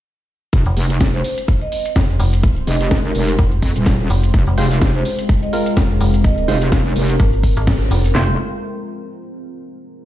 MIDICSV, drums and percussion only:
0, 0, Header, 1, 2, 480
1, 0, Start_track
1, 0, Key_signature, -4, "minor"
1, 0, Tempo, 476190
1, 533, Time_signature, 4, 2, 24, 8
1, 10131, End_track
2, 0, Start_track
2, 0, Title_t, "Drums"
2, 533, Note_on_c, 9, 42, 57
2, 535, Note_on_c, 9, 36, 118
2, 536, Note_on_c, 9, 70, 72
2, 634, Note_off_c, 9, 42, 0
2, 635, Note_off_c, 9, 36, 0
2, 637, Note_off_c, 9, 70, 0
2, 661, Note_on_c, 9, 70, 42
2, 761, Note_off_c, 9, 70, 0
2, 773, Note_on_c, 9, 46, 112
2, 874, Note_off_c, 9, 46, 0
2, 909, Note_on_c, 9, 42, 68
2, 909, Note_on_c, 9, 70, 72
2, 1009, Note_off_c, 9, 42, 0
2, 1009, Note_off_c, 9, 70, 0
2, 1010, Note_on_c, 9, 70, 69
2, 1014, Note_on_c, 9, 42, 57
2, 1015, Note_on_c, 9, 36, 118
2, 1016, Note_on_c, 9, 38, 127
2, 1111, Note_off_c, 9, 70, 0
2, 1115, Note_off_c, 9, 36, 0
2, 1115, Note_off_c, 9, 42, 0
2, 1117, Note_off_c, 9, 38, 0
2, 1150, Note_on_c, 9, 70, 42
2, 1250, Note_off_c, 9, 70, 0
2, 1254, Note_on_c, 9, 46, 96
2, 1355, Note_off_c, 9, 46, 0
2, 1386, Note_on_c, 9, 70, 77
2, 1389, Note_on_c, 9, 42, 69
2, 1487, Note_off_c, 9, 70, 0
2, 1489, Note_off_c, 9, 42, 0
2, 1493, Note_on_c, 9, 70, 64
2, 1494, Note_on_c, 9, 36, 111
2, 1494, Note_on_c, 9, 42, 52
2, 1594, Note_off_c, 9, 70, 0
2, 1595, Note_off_c, 9, 36, 0
2, 1595, Note_off_c, 9, 42, 0
2, 1623, Note_on_c, 9, 70, 39
2, 1724, Note_off_c, 9, 70, 0
2, 1733, Note_on_c, 9, 46, 115
2, 1834, Note_off_c, 9, 46, 0
2, 1869, Note_on_c, 9, 42, 70
2, 1869, Note_on_c, 9, 70, 78
2, 1969, Note_off_c, 9, 42, 0
2, 1969, Note_off_c, 9, 70, 0
2, 1974, Note_on_c, 9, 36, 117
2, 1974, Note_on_c, 9, 42, 55
2, 1974, Note_on_c, 9, 70, 59
2, 1976, Note_on_c, 9, 38, 127
2, 2075, Note_off_c, 9, 36, 0
2, 2075, Note_off_c, 9, 42, 0
2, 2075, Note_off_c, 9, 70, 0
2, 2077, Note_off_c, 9, 38, 0
2, 2119, Note_on_c, 9, 70, 40
2, 2214, Note_on_c, 9, 46, 92
2, 2219, Note_off_c, 9, 70, 0
2, 2315, Note_off_c, 9, 46, 0
2, 2349, Note_on_c, 9, 42, 66
2, 2350, Note_on_c, 9, 70, 85
2, 2450, Note_off_c, 9, 42, 0
2, 2450, Note_off_c, 9, 70, 0
2, 2450, Note_on_c, 9, 70, 66
2, 2454, Note_on_c, 9, 36, 127
2, 2455, Note_on_c, 9, 42, 54
2, 2551, Note_off_c, 9, 70, 0
2, 2555, Note_off_c, 9, 36, 0
2, 2555, Note_off_c, 9, 42, 0
2, 2583, Note_on_c, 9, 70, 39
2, 2684, Note_off_c, 9, 70, 0
2, 2694, Note_on_c, 9, 46, 113
2, 2696, Note_on_c, 9, 38, 42
2, 2795, Note_off_c, 9, 46, 0
2, 2797, Note_off_c, 9, 38, 0
2, 2829, Note_on_c, 9, 42, 66
2, 2831, Note_on_c, 9, 70, 90
2, 2930, Note_off_c, 9, 42, 0
2, 2932, Note_off_c, 9, 70, 0
2, 2934, Note_on_c, 9, 36, 121
2, 2935, Note_on_c, 9, 42, 57
2, 2935, Note_on_c, 9, 70, 64
2, 2937, Note_on_c, 9, 38, 127
2, 3035, Note_off_c, 9, 36, 0
2, 3035, Note_off_c, 9, 70, 0
2, 3036, Note_off_c, 9, 42, 0
2, 3038, Note_off_c, 9, 38, 0
2, 3073, Note_on_c, 9, 70, 44
2, 3174, Note_off_c, 9, 70, 0
2, 3174, Note_on_c, 9, 46, 95
2, 3275, Note_off_c, 9, 46, 0
2, 3306, Note_on_c, 9, 70, 78
2, 3309, Note_on_c, 9, 42, 63
2, 3406, Note_off_c, 9, 70, 0
2, 3410, Note_off_c, 9, 42, 0
2, 3413, Note_on_c, 9, 70, 65
2, 3414, Note_on_c, 9, 36, 123
2, 3415, Note_on_c, 9, 42, 54
2, 3514, Note_off_c, 9, 70, 0
2, 3515, Note_off_c, 9, 36, 0
2, 3515, Note_off_c, 9, 42, 0
2, 3540, Note_on_c, 9, 70, 41
2, 3641, Note_off_c, 9, 70, 0
2, 3654, Note_on_c, 9, 36, 65
2, 3654, Note_on_c, 9, 46, 117
2, 3755, Note_off_c, 9, 36, 0
2, 3755, Note_off_c, 9, 46, 0
2, 3789, Note_on_c, 9, 42, 69
2, 3790, Note_on_c, 9, 70, 76
2, 3886, Note_off_c, 9, 70, 0
2, 3886, Note_on_c, 9, 70, 76
2, 3889, Note_off_c, 9, 42, 0
2, 3894, Note_on_c, 9, 36, 116
2, 3894, Note_on_c, 9, 42, 57
2, 3896, Note_on_c, 9, 38, 127
2, 3987, Note_off_c, 9, 70, 0
2, 3995, Note_off_c, 9, 36, 0
2, 3995, Note_off_c, 9, 42, 0
2, 3997, Note_off_c, 9, 38, 0
2, 4031, Note_on_c, 9, 70, 41
2, 4132, Note_off_c, 9, 70, 0
2, 4133, Note_on_c, 9, 46, 93
2, 4234, Note_off_c, 9, 46, 0
2, 4266, Note_on_c, 9, 70, 82
2, 4269, Note_on_c, 9, 42, 69
2, 4367, Note_off_c, 9, 70, 0
2, 4370, Note_off_c, 9, 42, 0
2, 4373, Note_on_c, 9, 42, 52
2, 4374, Note_on_c, 9, 36, 127
2, 4375, Note_on_c, 9, 70, 74
2, 4474, Note_off_c, 9, 42, 0
2, 4475, Note_off_c, 9, 36, 0
2, 4476, Note_off_c, 9, 70, 0
2, 4501, Note_on_c, 9, 70, 42
2, 4602, Note_off_c, 9, 70, 0
2, 4613, Note_on_c, 9, 46, 117
2, 4714, Note_off_c, 9, 46, 0
2, 4747, Note_on_c, 9, 42, 65
2, 4756, Note_on_c, 9, 70, 86
2, 4848, Note_off_c, 9, 42, 0
2, 4849, Note_off_c, 9, 70, 0
2, 4849, Note_on_c, 9, 70, 66
2, 4854, Note_on_c, 9, 36, 127
2, 4854, Note_on_c, 9, 42, 53
2, 4855, Note_on_c, 9, 38, 125
2, 4949, Note_off_c, 9, 70, 0
2, 4954, Note_off_c, 9, 42, 0
2, 4955, Note_off_c, 9, 36, 0
2, 4956, Note_off_c, 9, 38, 0
2, 4980, Note_on_c, 9, 70, 40
2, 5080, Note_off_c, 9, 70, 0
2, 5093, Note_on_c, 9, 46, 95
2, 5194, Note_off_c, 9, 46, 0
2, 5228, Note_on_c, 9, 42, 66
2, 5229, Note_on_c, 9, 70, 82
2, 5329, Note_off_c, 9, 42, 0
2, 5330, Note_off_c, 9, 70, 0
2, 5334, Note_on_c, 9, 36, 127
2, 5334, Note_on_c, 9, 42, 53
2, 5336, Note_on_c, 9, 70, 72
2, 5435, Note_off_c, 9, 36, 0
2, 5435, Note_off_c, 9, 42, 0
2, 5437, Note_off_c, 9, 70, 0
2, 5467, Note_on_c, 9, 70, 46
2, 5568, Note_off_c, 9, 70, 0
2, 5574, Note_on_c, 9, 46, 115
2, 5674, Note_off_c, 9, 46, 0
2, 5703, Note_on_c, 9, 70, 83
2, 5709, Note_on_c, 9, 42, 69
2, 5804, Note_off_c, 9, 70, 0
2, 5810, Note_off_c, 9, 42, 0
2, 5812, Note_on_c, 9, 70, 72
2, 5814, Note_on_c, 9, 36, 119
2, 5814, Note_on_c, 9, 42, 55
2, 5816, Note_on_c, 9, 38, 127
2, 5913, Note_off_c, 9, 70, 0
2, 5915, Note_off_c, 9, 36, 0
2, 5915, Note_off_c, 9, 42, 0
2, 5917, Note_off_c, 9, 38, 0
2, 5948, Note_on_c, 9, 70, 40
2, 6048, Note_off_c, 9, 70, 0
2, 6054, Note_on_c, 9, 46, 93
2, 6155, Note_off_c, 9, 46, 0
2, 6189, Note_on_c, 9, 42, 66
2, 6189, Note_on_c, 9, 70, 80
2, 6289, Note_off_c, 9, 42, 0
2, 6289, Note_off_c, 9, 70, 0
2, 6293, Note_on_c, 9, 70, 75
2, 6294, Note_on_c, 9, 36, 125
2, 6294, Note_on_c, 9, 42, 50
2, 6393, Note_off_c, 9, 70, 0
2, 6395, Note_off_c, 9, 36, 0
2, 6395, Note_off_c, 9, 42, 0
2, 6429, Note_on_c, 9, 70, 41
2, 6530, Note_off_c, 9, 70, 0
2, 6535, Note_on_c, 9, 46, 114
2, 6537, Note_on_c, 9, 38, 39
2, 6636, Note_off_c, 9, 46, 0
2, 6638, Note_off_c, 9, 38, 0
2, 6667, Note_on_c, 9, 70, 84
2, 6669, Note_on_c, 9, 42, 64
2, 6767, Note_off_c, 9, 70, 0
2, 6770, Note_off_c, 9, 42, 0
2, 6774, Note_on_c, 9, 36, 122
2, 6774, Note_on_c, 9, 42, 55
2, 6775, Note_on_c, 9, 70, 67
2, 6776, Note_on_c, 9, 38, 122
2, 6875, Note_off_c, 9, 36, 0
2, 6875, Note_off_c, 9, 42, 0
2, 6876, Note_off_c, 9, 70, 0
2, 6877, Note_off_c, 9, 38, 0
2, 6907, Note_on_c, 9, 70, 43
2, 7008, Note_off_c, 9, 70, 0
2, 7014, Note_on_c, 9, 46, 97
2, 7115, Note_off_c, 9, 46, 0
2, 7150, Note_on_c, 9, 42, 62
2, 7151, Note_on_c, 9, 70, 87
2, 7251, Note_off_c, 9, 42, 0
2, 7252, Note_off_c, 9, 70, 0
2, 7254, Note_on_c, 9, 36, 120
2, 7254, Note_on_c, 9, 70, 72
2, 7255, Note_on_c, 9, 42, 50
2, 7354, Note_off_c, 9, 70, 0
2, 7355, Note_off_c, 9, 36, 0
2, 7356, Note_off_c, 9, 42, 0
2, 7387, Note_on_c, 9, 70, 43
2, 7487, Note_off_c, 9, 70, 0
2, 7494, Note_on_c, 9, 36, 61
2, 7495, Note_on_c, 9, 46, 119
2, 7595, Note_off_c, 9, 36, 0
2, 7596, Note_off_c, 9, 46, 0
2, 7629, Note_on_c, 9, 42, 63
2, 7629, Note_on_c, 9, 70, 73
2, 7730, Note_off_c, 9, 42, 0
2, 7730, Note_off_c, 9, 70, 0
2, 7733, Note_on_c, 9, 70, 69
2, 7734, Note_on_c, 9, 36, 121
2, 7734, Note_on_c, 9, 42, 51
2, 7736, Note_on_c, 9, 38, 119
2, 7834, Note_off_c, 9, 70, 0
2, 7835, Note_off_c, 9, 36, 0
2, 7835, Note_off_c, 9, 42, 0
2, 7837, Note_off_c, 9, 38, 0
2, 7866, Note_on_c, 9, 70, 38
2, 7966, Note_off_c, 9, 70, 0
2, 7974, Note_on_c, 9, 46, 97
2, 8075, Note_off_c, 9, 46, 0
2, 8108, Note_on_c, 9, 42, 61
2, 8117, Note_on_c, 9, 70, 88
2, 8209, Note_off_c, 9, 42, 0
2, 8215, Note_on_c, 9, 38, 111
2, 8215, Note_on_c, 9, 39, 94
2, 8215, Note_on_c, 9, 43, 105
2, 8217, Note_off_c, 9, 70, 0
2, 8315, Note_off_c, 9, 38, 0
2, 8315, Note_off_c, 9, 39, 0
2, 8315, Note_off_c, 9, 43, 0
2, 10131, End_track
0, 0, End_of_file